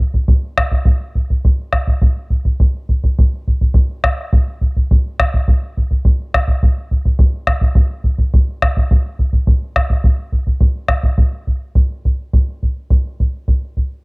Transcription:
0.00 bombo low medium
0.14 bombo low medium
0.28 bombo low medium
0.57 bombo rim medium
0.57 bombo low medium
0.72 bombo low medium
0.85 bombo low medium
1.15 bombo low medium
1.30 bombo low medium
1.45 bombo low medium
1.72 bombo rim soft
1.72 bombo low soft
1.87 bombo low medium
2.02 bombo low medium
2.30 bombo low soft
2.45 bombo low medium
2.60 bombo low medium
2.89 bombo low medium
3.04 bombo low medium
3.19 bombo low medium
3.48 bombo low medium
3.61 bombo low medium
3.74 bombo low medium
4.04 bombo rim medium
4.04 bombo low medium
4.33 bombo low medium
4.61 bombo low medium
4.77 bombo low medium
4.91 bombo low medium
5.20 bombo rim medium
5.20 bombo low medium
5.34 bombo low medium
5.48 bombo low medium
5.77 bombo low soft
5.91 bombo low medium
6.05 bombo low medium
6.34 bombo rim medium
6.34 bombo low medium
6.48 bombo low medium
6.63 bombo low medium
6.91 bombo low medium
7.06 bombo low medium
7.19 bombo low medium
7.47 bombo rim medium
7.47 bombo low medium
7.62 bombo low medium
7.75 bombo low medium
8.04 bombo low medium
8.19 bombo low medium
8.34 bombo low medium
8.62 bombo rim medium
8.62 bombo low medium
8.77 bombo low medium
8.91 bombo low medium
9.19 bombo low medium
9.33 bombo low medium
9.47 bombo low medium
9.76 bombo rim medium
9.76 bombo low medium
9.90 bombo low medium
10.04 bombo low medium
10.32 bombo low soft
10.47 bombo low medium
10.61 bombo low medium
10.88 bombo rim medium
10.88 bombo low medium
11.03 bombo low medium
11.18 bombo low medium
11.47 bombo low soft
11.75 bombo low medium
12.05 bombo low medium
12.33 bombo low medium
12.63 bombo low soft
12.90 bombo low medium
13.20 bombo low medium
13.48 bombo low medium
13.77 bombo low soft

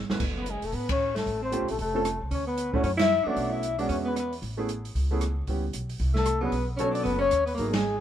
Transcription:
0.09 0.19 G1 medium
0.09 0.19 F#2 medium
0.09 0.19 A3 medium
0.09 0.20 B3 medium
0.09 0.20 E4 soft
0.09 0.20 B4 medium
0.09 snare medium
0.20 0.60 F#1 medium
0.20 kick medium
0.20 crash medium
0.37 0.50 B3 medium
0.37 0.52 B4 medium
0.46 0.65 G#3 medium
0.46 closed hi-hat soft
0.50 0.68 G#4 medium
0.62 0.72 E1 medium
0.62 0.75 A3 medium
0.62 open hi-hat soft
0.66 0.77 A4 medium
0.72 1.23 A1 medium
0.72 0.89 B3 medium
0.72 0.90 B4 medium
0.72 kick soft
0.72 open hi-hat soft
0.89 1.14 C#4 medium
0.89 1.15 C#5 loud
0.89 kick medium
0.89 ride medium
1.15 1.40 A3 medium
1.15 1.41 A4 medium
1.15 snare soft
1.15 open hi-hat soft
1.26 1.59 A1 medium
1.26 kick soft
1.26 open hi-hat soft
1.42 1.67 C4 medium
1.42 1.68 C5 medium
1.52 1.67 A3 medium
1.52 1.67 C4 medium
1.52 1.67 C#4 medium
1.52 1.67 F4 medium
1.52 1.67 G4 medium
1.52 closed hi-hat soft
1.62 1.70 C2 medium
1.68 1.78 A#1 medium
1.68 1.78 A3 medium
1.68 1.79 A4 medium
1.68 open hi-hat soft
1.78 2.18 F1 medium
1.78 2.20 A3 medium
1.78 2.19 A4 medium
1.78 kick soft
1.78 open hi-hat soft
1.94 2.04 A3 medium
1.94 2.04 C4 medium
1.94 2.04 C#4 medium
1.94 2.04 F4 medium
1.94 2.05 A4 medium
2.05 cross-stick medium
2.05 closed hi-hat medium
2.21 2.30 C2 medium
2.31 2.81 D2 medium
2.31 2.46 C#4 medium
2.31 2.47 C#5 medium
2.31 kick soft
2.31 open hi-hat soft
2.47 2.74 B3 medium
2.47 2.77 B4 loud
2.57 closed hi-hat medium
2.72 2.83 A3 medium
2.72 2.83 C#4 medium
2.72 2.84 D4 medium
2.72 2.84 E4 medium
2.72 2.84 F#4 medium
2.72 2.84 C#5 medium
2.72 kick medium
2.83 3.23 F#2 medium
2.83 2.91 C#4 medium
2.83 2.92 C#5 medium
2.83 kick soft
2.83 open hi-hat soft
2.97 3.25 E4 medium
2.97 3.29 E5 loud
2.97 snare medium
2.97 ride medium
3.24 3.61 A3 medium
3.24 3.61 B3 medium
3.24 3.62 C#4 medium
3.24 3.52 D4 medium
3.24 3.62 D4 medium
3.24 3.55 D5 loud
3.24 muted upright bass stroke soft
3.28 3.62 F#4 medium
3.36 3.86 B1 medium
3.36 kick soft
3.36 open hi-hat soft
3.50 3.78 E4 medium
3.50 3.79 E5 loud
3.63 closed hi-hat medium
3.78 4.13 G#3 medium
3.78 4.14 B3 medium
3.78 4.14 C#4 medium
3.78 3.88 D4 medium
3.78 4.14 D4 medium
3.78 4.14 F#4 medium
3.78 3.90 D5 medium
3.78 open hi-hat soft
3.89 4.39 E2 medium
3.89 3.96 C#4 medium
3.89 3.98 C#5 medium
3.89 kick soft
3.89 open hi-hat soft
4.05 4.15 B3 medium
4.05 4.16 B4 medium
4.16 4.35 B3 medium
4.16 4.36 B4 medium
4.16 cross-stick medium
4.16 closed hi-hat medium
4.33 open hi-hat soft
4.42 4.92 A1 medium
4.42 kick soft
4.42 open hi-hat soft
4.57 4.67 A3 medium
4.57 4.67 B3 medium
4.57 4.67 C#4 medium
4.57 4.68 E4 medium
4.57 4.68 G#4 medium
4.69 closed hi-hat medium
4.85 open hi-hat soft
4.95 5.45 C#2 medium
4.95 kick soft
4.95 open hi-hat soft
5.11 5.20 A3 medium
5.11 5.21 B3 medium
5.11 5.21 C#4 medium
5.11 5.21 E4 medium
5.11 5.21 G#4 medium
5.21 cross-stick medium
5.21 closed hi-hat soft
5.47 5.72 C#2 medium
5.47 5.62 G3 medium
5.47 5.62 B3 soft
5.47 5.63 C#4 soft
5.47 5.63 E4 soft
5.47 5.63 G4 medium
5.47 kick soft
5.47 open hi-hat soft
5.73 5.99 B1 medium
5.73 closed hi-hat medium
5.89 open hi-hat soft
5.99 6.50 C2 medium
5.99 kick soft
5.99 open hi-hat soft
6.14 6.39 A3 medium
6.14 snare soft
6.18 6.42 A4 loud
6.26 cross-stick medium
6.26 closed hi-hat medium
6.41 6.51 F#3 medium
6.41 6.66 B3 medium
6.41 6.51 B3 medium
6.41 6.52 C#4 medium
6.41 6.52 D4 medium
6.41 6.52 G#4 medium
6.41 6.68 B4 medium
6.52 7.03 B1 medium
6.52 kick soft
6.52 open hi-hat soft
6.76 7.18 F#3 medium
6.76 7.18 B3 medium
6.76 6.91 C#4 medium
6.76 7.18 C#4 medium
6.76 7.19 D4 medium
6.76 7.19 A4 medium
6.76 6.94 C#5 medium
6.76 closed hi-hat soft
6.91 7.02 D4 medium
6.91 7.04 D5 loud
6.91 open hi-hat soft
7.03 7.30 F#1 medium
7.03 7.18 B3 medium
7.03 7.20 B4 loud
7.03 kick soft
7.03 open hi-hat soft
7.18 7.44 C#4 loud
7.18 7.45 C#5 loud
7.31 7.56 D#2 medium
7.31 cross-stick medium
7.31 closed hi-hat medium
7.46 7.54 B3 medium
7.46 7.56 B4 medium
7.46 open hi-hat soft
7.54 8.00 G#1 medium
7.54 7.70 A#3 medium
7.54 7.75 A#4 medium
7.54 kick soft
7.54 open hi-hat soft
7.59 7.73 F#3 medium
7.59 7.73 A#3 medium
7.59 7.73 B3 medium
7.59 7.73 D#4 medium
7.59 7.74 G#4 medium
7.69 7.99 G#3 medium
7.73 8.00 G#4 medium
7.73 snare medium
7.73 ride medium
7.97 8.00 F#3 medium

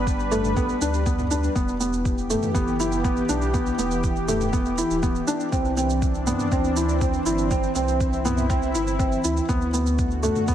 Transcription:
0.00 0.56 G1 medium
0.00 1.52 G3 medium
0.00 0.16 B3 medium
0.00 1.52 D4 medium
0.00 1.52 B4 loud
0.07 kick loud
0.07 shaker soft
0.20 shaker soft
0.31 0.48 A3 medium
0.31 mid tom medium
0.31 shaker medium
0.44 mid tom medium
0.44 shaker soft
0.57 0.72 A1 medium
0.57 0.74 B3 loud
0.57 kick medium
0.57 shaker soft
0.69 shaker soft
0.81 1.48 D2 loud
0.81 0.98 D4 medium
0.81 shaker medium
0.94 shaker soft
1.06 1.23 B3 medium
1.06 kick loud
1.06 shaker soft
1.19 mid tom medium
1.19 shaker soft
1.31 1.48 D4 medium
1.31 shaker medium
1.43 shaker soft
1.55 2.35 E1 loud
1.55 9.45 E3 medium
1.55 5.48 B3 medium
1.55 1.72 B3 medium
1.55 5.48 G4 loud
1.55 kick loud
1.55 shaker soft
1.68 shaker soft
1.80 2.14 B3 medium
1.80 shaker medium
1.93 shaker soft
2.05 kick loud
2.05 shaker soft
2.18 shaker soft
2.30 2.47 A3 medium
2.30 mid tom medium
2.30 shaker medium
2.43 mid tom medium
2.43 shaker soft
2.54 3.22 F#1 loud
2.54 2.72 B3 loud
2.54 kick loud
2.54 shaker soft
2.67 shaker soft
2.80 2.97 E4 medium
2.80 shaker medium
2.92 shaker soft
3.04 3.21 B3 medium
3.04 kick loud
3.04 shaker soft
3.17 shaker soft
3.29 3.72 B1 loud
3.29 3.46 D4 medium
3.29 shaker medium
3.42 shaker soft
3.54 3.71 B3 medium
3.54 kick loud
3.54 shaker soft
3.66 shaker soft
3.79 4.83 E1 medium
3.79 4.13 B3 medium
3.79 shaker medium
3.91 shaker soft
4.04 kick loud
4.04 shaker soft
4.16 shaker soft
4.28 4.45 A3 medium
4.28 mid tom medium
4.28 shaker medium
4.41 mid tom medium
4.41 shaker soft
4.53 4.70 B3 loud
4.53 kick loud
4.53 shaker soft
4.66 shaker soft
4.78 4.95 E4 medium
4.78 shaker medium
4.90 5.20 D1 medium
4.90 shaker soft
5.03 5.20 B3 medium
5.03 kick loud
5.03 shaker soft
5.15 shaker soft
5.27 5.44 D4 medium
5.27 shaker medium
5.40 shaker soft
5.52 6.32 C2 medium
5.52 5.69 C4 loud
5.52 9.45 C4 medium
5.52 7.49 D4 loud
5.52 kick loud
5.52 shaker soft
5.65 shaker soft
5.77 6.11 C4 medium
5.77 shaker medium
5.90 shaker soft
6.02 kick loud
6.02 shaker soft
6.14 shaker soft
6.27 6.44 B3 medium
6.27 mid tom medium
6.27 shaker medium
6.39 mid tom medium
6.39 shaker soft
6.52 7.19 D2 medium
6.52 6.69 C4 loud
6.52 kick loud
6.52 shaker soft
6.64 shaker soft
6.76 6.93 E4 medium
6.76 shaker medium
6.89 shaker soft
7.01 7.18 C4 medium
7.01 kick loud
7.01 shaker soft
7.13 shaker soft
7.26 7.68 G1 loud
7.26 7.43 E4 medium
7.26 shaker medium
7.38 shaker soft
7.51 7.68 C4 loud
7.51 9.47 E4 loud
7.51 kick loud
7.51 shaker soft
7.63 shaker soft
7.75 8.74 C2 medium
7.75 8.09 C4 medium
7.75 shaker medium
7.88 shaker soft
8.00 kick loud
8.00 shaker soft
8.13 shaker soft
8.25 8.42 B3 medium
8.25 mid tom medium
8.25 shaker medium
8.38 mid tom medium
8.38 shaker soft
8.50 8.67 C4 loud
8.50 kick loud
8.50 shaker soft
8.62 shaker soft
8.75 9.17 G1 medium
8.75 8.92 E4 medium
8.75 shaker medium
8.87 shaker soft
8.99 9.16 C4 medium
8.99 kick loud
8.99 shaker soft
9.12 shaker soft
9.24 9.40 D2 medium
9.24 9.41 E4 medium
9.24 shaker medium
9.37 shaker soft
9.49 10.29 D2 loud
9.49 10.55 D3 medium
9.49 10.55 A3 medium
9.49 9.66 B3 loud
9.49 10.55 F#4 loud
9.49 kick loud
9.49 shaker soft
9.61 shaker soft
9.73 10.07 B3 medium
9.73 shaker medium
9.86 shaker soft
9.98 kick loud
9.98 shaker soft
10.11 shaker soft
10.23 10.40 A3 medium
10.23 mid tom medium
10.23 shaker medium
10.36 mid tom medium
10.36 shaker soft
10.48 10.55 E2 medium
10.48 10.55 B3 loud
10.48 kick loud
10.48 shaker soft

